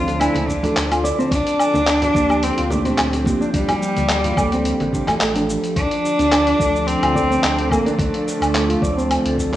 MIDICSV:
0, 0, Header, 1, 8, 480
1, 0, Start_track
1, 0, Key_signature, -1, "minor"
1, 0, Tempo, 555556
1, 1140, Time_signature, 4, 2, 24, 8
1, 8262, End_track
2, 0, Start_track
2, 0, Title_t, "Singing bowl"
2, 0, Program_c, 0, 14
2, 0, Note_on_c, 0, 72, 77
2, 4987, Note_off_c, 0, 72, 0
2, 8262, End_track
3, 0, Start_track
3, 0, Title_t, "Analog synth pad"
3, 0, Program_c, 1, 89
3, 0, Note_on_c, 1, 50, 83
3, 0, Note_on_c, 1, 53, 89
3, 0, Note_on_c, 1, 62, 69
3, 0, Note_on_c, 1, 69, 73
3, 1139, Note_off_c, 1, 50, 0
3, 1546, Note_on_c, 1, 67, 76
3, 1989, Note_off_c, 1, 62, 0
3, 2679, Note_off_c, 1, 69, 0
3, 4981, Note_on_c, 1, 50, 72
3, 5087, Note_on_c, 1, 62, 90
3, 5294, Note_on_c, 1, 69, 79
3, 6520, Note_off_c, 1, 67, 0
3, 8262, Note_off_c, 1, 50, 0
3, 8262, Note_off_c, 1, 53, 0
3, 8262, Note_off_c, 1, 62, 0
3, 8262, Note_off_c, 1, 69, 0
3, 8262, End_track
4, 0, Start_track
4, 0, Title_t, "Nylon-string guitar"
4, 0, Program_c, 2, 24
4, 66, Note_on_c, 2, 62, 89
4, 130, Note_off_c, 2, 62, 0
4, 178, Note_on_c, 2, 62, 104
4, 301, Note_off_c, 2, 62, 0
4, 788, Note_on_c, 2, 65, 79
4, 894, Note_off_c, 2, 65, 0
4, 899, Note_on_c, 2, 74, 99
4, 1014, Note_off_c, 2, 74, 0
4, 1025, Note_on_c, 2, 60, 102
4, 1138, Note_off_c, 2, 60, 0
4, 1504, Note_on_c, 2, 62, 101
4, 1569, Note_off_c, 2, 62, 0
4, 1616, Note_on_c, 2, 62, 107
4, 1739, Note_off_c, 2, 62, 0
4, 2224, Note_on_c, 2, 65, 84
4, 2332, Note_off_c, 2, 65, 0
4, 2335, Note_on_c, 2, 74, 105
4, 2453, Note_off_c, 2, 74, 0
4, 2462, Note_on_c, 2, 60, 110
4, 2932, Note_off_c, 2, 60, 0
4, 2943, Note_on_c, 2, 62, 105
4, 3009, Note_off_c, 2, 62, 0
4, 3055, Note_on_c, 2, 62, 108
4, 3179, Note_off_c, 2, 62, 0
4, 3666, Note_on_c, 2, 65, 82
4, 3773, Note_off_c, 2, 65, 0
4, 3778, Note_on_c, 2, 74, 106
4, 3894, Note_off_c, 2, 74, 0
4, 3906, Note_on_c, 2, 60, 91
4, 4259, Note_on_c, 2, 62, 77
4, 4374, Note_off_c, 2, 60, 0
4, 4381, Note_off_c, 2, 62, 0
4, 4387, Note_on_c, 2, 57, 74
4, 4488, Note_off_c, 2, 57, 0
4, 4498, Note_on_c, 2, 57, 84
4, 4620, Note_off_c, 2, 57, 0
4, 4626, Note_on_c, 2, 62, 82
4, 4690, Note_off_c, 2, 62, 0
4, 5347, Note_on_c, 2, 62, 99
4, 5411, Note_off_c, 2, 62, 0
4, 5459, Note_on_c, 2, 62, 103
4, 5581, Note_off_c, 2, 62, 0
4, 6068, Note_on_c, 2, 65, 75
4, 6174, Note_off_c, 2, 65, 0
4, 6180, Note_on_c, 2, 74, 111
4, 6295, Note_off_c, 2, 74, 0
4, 6307, Note_on_c, 2, 60, 100
4, 6774, Note_off_c, 2, 60, 0
4, 6789, Note_on_c, 2, 62, 101
4, 6852, Note_off_c, 2, 62, 0
4, 6901, Note_on_c, 2, 62, 105
4, 7022, Note_off_c, 2, 62, 0
4, 7508, Note_on_c, 2, 65, 82
4, 7614, Note_off_c, 2, 65, 0
4, 7620, Note_on_c, 2, 74, 100
4, 7735, Note_off_c, 2, 74, 0
4, 7749, Note_on_c, 2, 60, 88
4, 8215, Note_off_c, 2, 60, 0
4, 8229, Note_on_c, 2, 62, 97
4, 8262, Note_off_c, 2, 62, 0
4, 8262, End_track
5, 0, Start_track
5, 0, Title_t, "Cello"
5, 0, Program_c, 3, 42
5, 0, Note_on_c, 3, 65, 112
5, 172, Note_on_c, 3, 64, 95
5, 185, Note_off_c, 3, 65, 0
5, 415, Note_on_c, 3, 62, 81
5, 428, Note_off_c, 3, 64, 0
5, 897, Note_off_c, 3, 62, 0
5, 1135, Note_on_c, 3, 62, 123
5, 2103, Note_on_c, 3, 60, 103
5, 2116, Note_off_c, 3, 62, 0
5, 2335, Note_off_c, 3, 60, 0
5, 2340, Note_on_c, 3, 57, 80
5, 2786, Note_off_c, 3, 57, 0
5, 3053, Note_on_c, 3, 55, 127
5, 4461, Note_off_c, 3, 55, 0
5, 4979, Note_on_c, 3, 62, 123
5, 5935, Note_on_c, 3, 60, 116
5, 5948, Note_off_c, 3, 62, 0
5, 6659, Note_on_c, 3, 58, 93
5, 6672, Note_off_c, 3, 60, 0
5, 6890, Note_off_c, 3, 58, 0
5, 6895, Note_on_c, 3, 57, 93
5, 8262, Note_off_c, 3, 57, 0
5, 8262, End_track
6, 0, Start_track
6, 0, Title_t, "Synth keys"
6, 0, Program_c, 4, 88
6, 0, Note_on_c, 4, 53, 83
6, 0, Note_on_c, 4, 57, 70
6, 0, Note_on_c, 4, 62, 75
6, 0, Note_on_c, 4, 72, 94
6, 387, Note_off_c, 4, 53, 0
6, 389, Note_off_c, 4, 57, 0
6, 393, Note_off_c, 4, 62, 0
6, 396, Note_off_c, 4, 72, 0
6, 535, Note_on_c, 4, 53, 83
6, 540, Note_on_c, 4, 57, 70
6, 546, Note_on_c, 4, 62, 73
6, 553, Note_on_c, 4, 69, 89
6, 646, Note_off_c, 4, 53, 0
6, 649, Note_off_c, 4, 57, 0
6, 652, Note_off_c, 4, 62, 0
6, 655, Note_off_c, 4, 69, 0
6, 1847, Note_on_c, 4, 53, 83
6, 1852, Note_on_c, 4, 58, 79
6, 1859, Note_on_c, 4, 62, 73
6, 1864, Note_on_c, 4, 67, 89
6, 2306, Note_off_c, 4, 53, 0
6, 2309, Note_off_c, 4, 58, 0
6, 2312, Note_off_c, 4, 62, 0
6, 2315, Note_off_c, 4, 67, 0
6, 2325, Note_on_c, 4, 53, 90
6, 2331, Note_on_c, 4, 58, 88
6, 2337, Note_on_c, 4, 62, 84
6, 2343, Note_on_c, 4, 67, 92
6, 2430, Note_off_c, 4, 53, 0
6, 2433, Note_off_c, 4, 58, 0
6, 2436, Note_off_c, 4, 62, 0
6, 2438, Note_off_c, 4, 67, 0
6, 2455, Note_on_c, 4, 53, 75
6, 2462, Note_on_c, 4, 46, 75
6, 2467, Note_on_c, 4, 62, 71
6, 2472, Note_on_c, 4, 67, 86
6, 2786, Note_off_c, 4, 53, 0
6, 2790, Note_off_c, 4, 46, 0
6, 2792, Note_off_c, 4, 62, 0
6, 2795, Note_off_c, 4, 67, 0
6, 2798, Note_on_c, 4, 53, 108
6, 2810, Note_on_c, 4, 58, 95
6, 2821, Note_on_c, 4, 62, 96
6, 2831, Note_on_c, 4, 67, 109
6, 3742, Note_off_c, 4, 53, 0
6, 3748, Note_off_c, 4, 58, 0
6, 3753, Note_off_c, 4, 62, 0
6, 3759, Note_off_c, 4, 67, 0
6, 3767, Note_on_c, 4, 53, 87
6, 3773, Note_on_c, 4, 58, 78
6, 3779, Note_on_c, 4, 62, 78
6, 3785, Note_on_c, 4, 69, 98
6, 4227, Note_off_c, 4, 53, 0
6, 4229, Note_off_c, 4, 58, 0
6, 4232, Note_off_c, 4, 62, 0
6, 4236, Note_off_c, 4, 69, 0
6, 4617, Note_on_c, 4, 53, 87
6, 4629, Note_on_c, 4, 62, 81
6, 4634, Note_on_c, 4, 69, 102
6, 4961, Note_off_c, 4, 53, 0
6, 4967, Note_off_c, 4, 62, 0
6, 4969, Note_off_c, 4, 69, 0
6, 5690, Note_on_c, 4, 53, 82
6, 5695, Note_on_c, 4, 57, 70
6, 5701, Note_on_c, 4, 62, 73
6, 5706, Note_on_c, 4, 69, 85
6, 6148, Note_off_c, 4, 53, 0
6, 6150, Note_off_c, 4, 57, 0
6, 6153, Note_off_c, 4, 62, 0
6, 6156, Note_off_c, 4, 69, 0
6, 6173, Note_on_c, 4, 53, 88
6, 6179, Note_on_c, 4, 57, 80
6, 6184, Note_on_c, 4, 62, 80
6, 6191, Note_on_c, 4, 69, 100
6, 6274, Note_off_c, 4, 53, 0
6, 6277, Note_off_c, 4, 57, 0
6, 6279, Note_off_c, 4, 62, 0
6, 6283, Note_off_c, 4, 69, 0
6, 6300, Note_on_c, 4, 53, 73
6, 6306, Note_on_c, 4, 57, 72
6, 6311, Note_on_c, 4, 62, 72
6, 6317, Note_on_c, 4, 69, 82
6, 6629, Note_off_c, 4, 53, 0
6, 6632, Note_off_c, 4, 57, 0
6, 6634, Note_off_c, 4, 62, 0
6, 6637, Note_off_c, 4, 69, 0
6, 6643, Note_on_c, 4, 53, 103
6, 6653, Note_on_c, 4, 57, 97
6, 6665, Note_on_c, 4, 62, 95
6, 6677, Note_on_c, 4, 69, 106
6, 7584, Note_off_c, 4, 53, 0
6, 7590, Note_off_c, 4, 57, 0
6, 7596, Note_off_c, 4, 62, 0
6, 7602, Note_off_c, 4, 69, 0
6, 7611, Note_on_c, 4, 53, 86
6, 7617, Note_on_c, 4, 57, 77
6, 7622, Note_on_c, 4, 62, 73
6, 7629, Note_on_c, 4, 72, 84
6, 8068, Note_off_c, 4, 53, 0
6, 8071, Note_off_c, 4, 57, 0
6, 8074, Note_off_c, 4, 62, 0
6, 8077, Note_off_c, 4, 72, 0
6, 8221, Note_on_c, 4, 53, 83
6, 8228, Note_on_c, 4, 57, 77
6, 8232, Note_on_c, 4, 62, 73
6, 8262, Note_off_c, 4, 53, 0
6, 8262, Note_off_c, 4, 57, 0
6, 8262, Note_off_c, 4, 62, 0
6, 8262, End_track
7, 0, Start_track
7, 0, Title_t, "Sub bass"
7, 0, Program_c, 5, 38
7, 0, Note_on_c, 5, 38, 98
7, 247, Note_off_c, 5, 38, 0
7, 307, Note_on_c, 5, 38, 84
7, 607, Note_off_c, 5, 38, 0
7, 661, Note_on_c, 5, 38, 82
7, 969, Note_off_c, 5, 38, 0
7, 1135, Note_on_c, 5, 38, 98
7, 1228, Note_off_c, 5, 38, 0
7, 1507, Note_on_c, 5, 38, 91
7, 1807, Note_off_c, 5, 38, 0
7, 1856, Note_on_c, 5, 38, 98
7, 2166, Note_off_c, 5, 38, 0
7, 2230, Note_on_c, 5, 38, 89
7, 2529, Note_off_c, 5, 38, 0
7, 2580, Note_on_c, 5, 38, 81
7, 2888, Note_off_c, 5, 38, 0
7, 3056, Note_on_c, 5, 38, 99
7, 3149, Note_off_c, 5, 38, 0
7, 3430, Note_on_c, 5, 38, 90
7, 3729, Note_off_c, 5, 38, 0
7, 3777, Note_on_c, 5, 38, 102
7, 4087, Note_off_c, 5, 38, 0
7, 4149, Note_on_c, 5, 33, 101
7, 4448, Note_off_c, 5, 33, 0
7, 4502, Note_on_c, 5, 33, 103
7, 4810, Note_off_c, 5, 33, 0
7, 4978, Note_on_c, 5, 38, 101
7, 5070, Note_off_c, 5, 38, 0
7, 5348, Note_on_c, 5, 38, 89
7, 5648, Note_off_c, 5, 38, 0
7, 5700, Note_on_c, 5, 38, 99
7, 6008, Note_off_c, 5, 38, 0
7, 6068, Note_on_c, 5, 38, 86
7, 6368, Note_off_c, 5, 38, 0
7, 6421, Note_on_c, 5, 38, 86
7, 6729, Note_off_c, 5, 38, 0
7, 6900, Note_on_c, 5, 38, 99
7, 6991, Note_off_c, 5, 38, 0
7, 7266, Note_on_c, 5, 38, 88
7, 7567, Note_off_c, 5, 38, 0
7, 7619, Note_on_c, 5, 38, 99
7, 7928, Note_off_c, 5, 38, 0
7, 7991, Note_on_c, 5, 38, 85
7, 8262, Note_off_c, 5, 38, 0
7, 8262, End_track
8, 0, Start_track
8, 0, Title_t, "Drums"
8, 68, Note_on_c, 9, 60, 61
8, 69, Note_on_c, 9, 46, 31
8, 77, Note_on_c, 9, 82, 32
8, 154, Note_off_c, 9, 60, 0
8, 155, Note_off_c, 9, 46, 0
8, 163, Note_off_c, 9, 82, 0
8, 181, Note_on_c, 9, 46, 64
8, 181, Note_on_c, 9, 77, 83
8, 189, Note_on_c, 9, 82, 43
8, 267, Note_off_c, 9, 46, 0
8, 267, Note_off_c, 9, 77, 0
8, 275, Note_off_c, 9, 82, 0
8, 300, Note_on_c, 9, 63, 78
8, 308, Note_on_c, 9, 46, 46
8, 386, Note_off_c, 9, 63, 0
8, 394, Note_off_c, 9, 46, 0
8, 417, Note_on_c, 9, 36, 56
8, 420, Note_on_c, 9, 63, 64
8, 429, Note_on_c, 9, 82, 68
8, 503, Note_off_c, 9, 36, 0
8, 506, Note_off_c, 9, 63, 0
8, 516, Note_off_c, 9, 82, 0
8, 546, Note_on_c, 9, 64, 80
8, 550, Note_on_c, 9, 46, 34
8, 558, Note_on_c, 9, 82, 33
8, 633, Note_off_c, 9, 64, 0
8, 636, Note_off_c, 9, 46, 0
8, 644, Note_off_c, 9, 82, 0
8, 662, Note_on_c, 9, 39, 100
8, 662, Note_on_c, 9, 46, 65
8, 670, Note_on_c, 9, 82, 43
8, 749, Note_off_c, 9, 39, 0
8, 749, Note_off_c, 9, 46, 0
8, 757, Note_off_c, 9, 82, 0
8, 791, Note_on_c, 9, 46, 42
8, 791, Note_on_c, 9, 77, 79
8, 799, Note_on_c, 9, 82, 29
8, 877, Note_off_c, 9, 46, 0
8, 877, Note_off_c, 9, 77, 0
8, 885, Note_off_c, 9, 82, 0
8, 908, Note_on_c, 9, 82, 77
8, 995, Note_off_c, 9, 82, 0
8, 1037, Note_on_c, 9, 82, 31
8, 1123, Note_off_c, 9, 82, 0
8, 1136, Note_on_c, 9, 36, 117
8, 1140, Note_on_c, 9, 46, 74
8, 1148, Note_on_c, 9, 82, 45
8, 1222, Note_off_c, 9, 36, 0
8, 1226, Note_off_c, 9, 46, 0
8, 1234, Note_off_c, 9, 82, 0
8, 1268, Note_on_c, 9, 46, 49
8, 1276, Note_on_c, 9, 82, 30
8, 1354, Note_off_c, 9, 46, 0
8, 1362, Note_off_c, 9, 82, 0
8, 1378, Note_on_c, 9, 77, 78
8, 1386, Note_on_c, 9, 82, 66
8, 1464, Note_off_c, 9, 77, 0
8, 1472, Note_off_c, 9, 82, 0
8, 1500, Note_on_c, 9, 63, 70
8, 1513, Note_on_c, 9, 82, 32
8, 1587, Note_off_c, 9, 63, 0
8, 1599, Note_off_c, 9, 82, 0
8, 1617, Note_on_c, 9, 39, 98
8, 1617, Note_on_c, 9, 46, 69
8, 1625, Note_on_c, 9, 82, 44
8, 1703, Note_off_c, 9, 39, 0
8, 1703, Note_off_c, 9, 46, 0
8, 1711, Note_off_c, 9, 82, 0
8, 1745, Note_on_c, 9, 46, 47
8, 1745, Note_on_c, 9, 64, 71
8, 1753, Note_on_c, 9, 82, 28
8, 1831, Note_off_c, 9, 46, 0
8, 1831, Note_off_c, 9, 64, 0
8, 1839, Note_off_c, 9, 82, 0
8, 1856, Note_on_c, 9, 36, 104
8, 1857, Note_on_c, 9, 60, 57
8, 1866, Note_on_c, 9, 82, 75
8, 1942, Note_off_c, 9, 36, 0
8, 1944, Note_off_c, 9, 60, 0
8, 1952, Note_off_c, 9, 82, 0
8, 1983, Note_on_c, 9, 60, 69
8, 1986, Note_on_c, 9, 77, 83
8, 1994, Note_on_c, 9, 82, 33
8, 2069, Note_off_c, 9, 60, 0
8, 2072, Note_off_c, 9, 77, 0
8, 2080, Note_off_c, 9, 82, 0
8, 2097, Note_on_c, 9, 46, 73
8, 2105, Note_on_c, 9, 82, 41
8, 2183, Note_off_c, 9, 46, 0
8, 2191, Note_off_c, 9, 82, 0
8, 2226, Note_on_c, 9, 46, 48
8, 2313, Note_off_c, 9, 46, 0
8, 2336, Note_on_c, 9, 36, 54
8, 2337, Note_on_c, 9, 64, 93
8, 2338, Note_on_c, 9, 63, 66
8, 2345, Note_on_c, 9, 82, 72
8, 2422, Note_off_c, 9, 36, 0
8, 2423, Note_off_c, 9, 64, 0
8, 2425, Note_off_c, 9, 63, 0
8, 2431, Note_off_c, 9, 82, 0
8, 2465, Note_on_c, 9, 46, 33
8, 2468, Note_on_c, 9, 60, 76
8, 2473, Note_on_c, 9, 82, 31
8, 2551, Note_off_c, 9, 46, 0
8, 2555, Note_off_c, 9, 60, 0
8, 2559, Note_off_c, 9, 82, 0
8, 2577, Note_on_c, 9, 39, 94
8, 2577, Note_on_c, 9, 46, 68
8, 2577, Note_on_c, 9, 77, 79
8, 2585, Note_on_c, 9, 82, 41
8, 2663, Note_off_c, 9, 39, 0
8, 2663, Note_off_c, 9, 46, 0
8, 2663, Note_off_c, 9, 77, 0
8, 2671, Note_off_c, 9, 82, 0
8, 2705, Note_on_c, 9, 46, 45
8, 2706, Note_on_c, 9, 60, 54
8, 2713, Note_on_c, 9, 82, 28
8, 2792, Note_off_c, 9, 46, 0
8, 2792, Note_off_c, 9, 60, 0
8, 2800, Note_off_c, 9, 82, 0
8, 2810, Note_on_c, 9, 63, 69
8, 2817, Note_on_c, 9, 36, 96
8, 2826, Note_on_c, 9, 82, 74
8, 2897, Note_off_c, 9, 63, 0
8, 2903, Note_off_c, 9, 36, 0
8, 2912, Note_off_c, 9, 82, 0
8, 2952, Note_on_c, 9, 82, 31
8, 3039, Note_off_c, 9, 82, 0
8, 3057, Note_on_c, 9, 36, 124
8, 3057, Note_on_c, 9, 46, 72
8, 3065, Note_on_c, 9, 82, 42
8, 3143, Note_off_c, 9, 36, 0
8, 3144, Note_off_c, 9, 46, 0
8, 3152, Note_off_c, 9, 82, 0
8, 3183, Note_on_c, 9, 64, 88
8, 3185, Note_on_c, 9, 46, 49
8, 3185, Note_on_c, 9, 77, 85
8, 3193, Note_on_c, 9, 82, 29
8, 3270, Note_off_c, 9, 64, 0
8, 3272, Note_off_c, 9, 46, 0
8, 3272, Note_off_c, 9, 77, 0
8, 3280, Note_off_c, 9, 82, 0
8, 3304, Note_on_c, 9, 82, 70
8, 3391, Note_off_c, 9, 82, 0
8, 3427, Note_on_c, 9, 46, 35
8, 3427, Note_on_c, 9, 63, 63
8, 3435, Note_on_c, 9, 82, 33
8, 3513, Note_off_c, 9, 46, 0
8, 3513, Note_off_c, 9, 63, 0
8, 3521, Note_off_c, 9, 82, 0
8, 3537, Note_on_c, 9, 39, 93
8, 3537, Note_on_c, 9, 46, 74
8, 3545, Note_on_c, 9, 82, 43
8, 3624, Note_off_c, 9, 39, 0
8, 3624, Note_off_c, 9, 46, 0
8, 3632, Note_off_c, 9, 82, 0
8, 3666, Note_on_c, 9, 46, 49
8, 3667, Note_on_c, 9, 64, 71
8, 3674, Note_on_c, 9, 82, 30
8, 3752, Note_off_c, 9, 46, 0
8, 3753, Note_off_c, 9, 64, 0
8, 3760, Note_off_c, 9, 82, 0
8, 3777, Note_on_c, 9, 36, 113
8, 3777, Note_on_c, 9, 77, 84
8, 3783, Note_on_c, 9, 60, 54
8, 3785, Note_on_c, 9, 82, 79
8, 3863, Note_off_c, 9, 77, 0
8, 3864, Note_off_c, 9, 36, 0
8, 3870, Note_off_c, 9, 60, 0
8, 3871, Note_off_c, 9, 82, 0
8, 3906, Note_on_c, 9, 46, 36
8, 3907, Note_on_c, 9, 60, 73
8, 3914, Note_on_c, 9, 82, 31
8, 3993, Note_off_c, 9, 46, 0
8, 3993, Note_off_c, 9, 60, 0
8, 4001, Note_off_c, 9, 82, 0
8, 4019, Note_on_c, 9, 46, 71
8, 4027, Note_on_c, 9, 82, 42
8, 4105, Note_off_c, 9, 46, 0
8, 4113, Note_off_c, 9, 82, 0
8, 4148, Note_on_c, 9, 46, 50
8, 4150, Note_on_c, 9, 63, 78
8, 4156, Note_on_c, 9, 82, 33
8, 4235, Note_off_c, 9, 46, 0
8, 4237, Note_off_c, 9, 63, 0
8, 4243, Note_off_c, 9, 82, 0
8, 4257, Note_on_c, 9, 36, 58
8, 4263, Note_on_c, 9, 63, 67
8, 4268, Note_on_c, 9, 82, 69
8, 4344, Note_off_c, 9, 36, 0
8, 4350, Note_off_c, 9, 63, 0
8, 4354, Note_off_c, 9, 82, 0
8, 4390, Note_on_c, 9, 39, 31
8, 4390, Note_on_c, 9, 46, 36
8, 4390, Note_on_c, 9, 64, 84
8, 4390, Note_on_c, 9, 77, 89
8, 4398, Note_on_c, 9, 82, 34
8, 4476, Note_off_c, 9, 39, 0
8, 4476, Note_off_c, 9, 46, 0
8, 4476, Note_off_c, 9, 64, 0
8, 4476, Note_off_c, 9, 77, 0
8, 4484, Note_off_c, 9, 82, 0
8, 4500, Note_on_c, 9, 39, 105
8, 4500, Note_on_c, 9, 46, 73
8, 4508, Note_on_c, 9, 82, 43
8, 4587, Note_off_c, 9, 39, 0
8, 4587, Note_off_c, 9, 46, 0
8, 4595, Note_off_c, 9, 82, 0
8, 4627, Note_on_c, 9, 46, 48
8, 4636, Note_on_c, 9, 82, 29
8, 4714, Note_off_c, 9, 46, 0
8, 4722, Note_off_c, 9, 82, 0
8, 4749, Note_on_c, 9, 82, 76
8, 4835, Note_off_c, 9, 82, 0
8, 4869, Note_on_c, 9, 46, 33
8, 4877, Note_on_c, 9, 82, 33
8, 4956, Note_off_c, 9, 46, 0
8, 4964, Note_off_c, 9, 82, 0
8, 4978, Note_on_c, 9, 36, 123
8, 4980, Note_on_c, 9, 46, 73
8, 4988, Note_on_c, 9, 82, 36
8, 5065, Note_off_c, 9, 36, 0
8, 5067, Note_off_c, 9, 46, 0
8, 5075, Note_off_c, 9, 82, 0
8, 5109, Note_on_c, 9, 46, 48
8, 5195, Note_off_c, 9, 46, 0
8, 5230, Note_on_c, 9, 82, 77
8, 5316, Note_off_c, 9, 82, 0
8, 5351, Note_on_c, 9, 46, 34
8, 5359, Note_on_c, 9, 82, 44
8, 5437, Note_off_c, 9, 46, 0
8, 5445, Note_off_c, 9, 82, 0
8, 5464, Note_on_c, 9, 39, 103
8, 5464, Note_on_c, 9, 46, 69
8, 5464, Note_on_c, 9, 77, 73
8, 5472, Note_on_c, 9, 82, 31
8, 5550, Note_off_c, 9, 39, 0
8, 5550, Note_off_c, 9, 46, 0
8, 5550, Note_off_c, 9, 77, 0
8, 5558, Note_off_c, 9, 82, 0
8, 5590, Note_on_c, 9, 46, 45
8, 5676, Note_off_c, 9, 46, 0
8, 5699, Note_on_c, 9, 36, 107
8, 5709, Note_on_c, 9, 82, 80
8, 5786, Note_off_c, 9, 36, 0
8, 5796, Note_off_c, 9, 82, 0
8, 5838, Note_on_c, 9, 82, 44
8, 5925, Note_off_c, 9, 82, 0
8, 5942, Note_on_c, 9, 46, 68
8, 5950, Note_on_c, 9, 82, 32
8, 6028, Note_off_c, 9, 46, 0
8, 6036, Note_off_c, 9, 82, 0
8, 6073, Note_on_c, 9, 46, 46
8, 6073, Note_on_c, 9, 77, 81
8, 6159, Note_off_c, 9, 46, 0
8, 6159, Note_off_c, 9, 77, 0
8, 6180, Note_on_c, 9, 36, 63
8, 6193, Note_on_c, 9, 82, 75
8, 6266, Note_off_c, 9, 36, 0
8, 6279, Note_off_c, 9, 82, 0
8, 6322, Note_on_c, 9, 82, 47
8, 6408, Note_off_c, 9, 82, 0
8, 6426, Note_on_c, 9, 39, 104
8, 6426, Note_on_c, 9, 46, 67
8, 6434, Note_on_c, 9, 82, 32
8, 6512, Note_off_c, 9, 39, 0
8, 6512, Note_off_c, 9, 46, 0
8, 6520, Note_off_c, 9, 82, 0
8, 6552, Note_on_c, 9, 46, 46
8, 6639, Note_off_c, 9, 46, 0
8, 6660, Note_on_c, 9, 36, 108
8, 6665, Note_on_c, 9, 77, 81
8, 6673, Note_on_c, 9, 82, 83
8, 6746, Note_off_c, 9, 36, 0
8, 6751, Note_off_c, 9, 77, 0
8, 6759, Note_off_c, 9, 82, 0
8, 6793, Note_on_c, 9, 46, 33
8, 6801, Note_on_c, 9, 82, 45
8, 6880, Note_off_c, 9, 46, 0
8, 6888, Note_off_c, 9, 82, 0
8, 6900, Note_on_c, 9, 36, 127
8, 6906, Note_on_c, 9, 46, 69
8, 6914, Note_on_c, 9, 82, 35
8, 6986, Note_off_c, 9, 36, 0
8, 6992, Note_off_c, 9, 46, 0
8, 7000, Note_off_c, 9, 82, 0
8, 7034, Note_on_c, 9, 46, 46
8, 7120, Note_off_c, 9, 46, 0
8, 7155, Note_on_c, 9, 82, 80
8, 7242, Note_off_c, 9, 82, 0
8, 7276, Note_on_c, 9, 46, 35
8, 7276, Note_on_c, 9, 77, 74
8, 7284, Note_on_c, 9, 82, 45
8, 7362, Note_off_c, 9, 46, 0
8, 7362, Note_off_c, 9, 77, 0
8, 7370, Note_off_c, 9, 82, 0
8, 7388, Note_on_c, 9, 39, 95
8, 7388, Note_on_c, 9, 46, 63
8, 7396, Note_on_c, 9, 82, 34
8, 7474, Note_off_c, 9, 39, 0
8, 7474, Note_off_c, 9, 46, 0
8, 7482, Note_off_c, 9, 82, 0
8, 7517, Note_on_c, 9, 46, 44
8, 7603, Note_off_c, 9, 46, 0
8, 7620, Note_on_c, 9, 36, 110
8, 7637, Note_on_c, 9, 82, 82
8, 7706, Note_off_c, 9, 36, 0
8, 7723, Note_off_c, 9, 82, 0
8, 7764, Note_on_c, 9, 82, 46
8, 7851, Note_off_c, 9, 82, 0
8, 7867, Note_on_c, 9, 46, 69
8, 7867, Note_on_c, 9, 77, 74
8, 7875, Note_on_c, 9, 82, 33
8, 7954, Note_off_c, 9, 46, 0
8, 7954, Note_off_c, 9, 77, 0
8, 7962, Note_off_c, 9, 82, 0
8, 7995, Note_on_c, 9, 46, 50
8, 8082, Note_off_c, 9, 46, 0
8, 8100, Note_on_c, 9, 36, 60
8, 8114, Note_on_c, 9, 82, 78
8, 8186, Note_off_c, 9, 36, 0
8, 8200, Note_off_c, 9, 82, 0
8, 8262, End_track
0, 0, End_of_file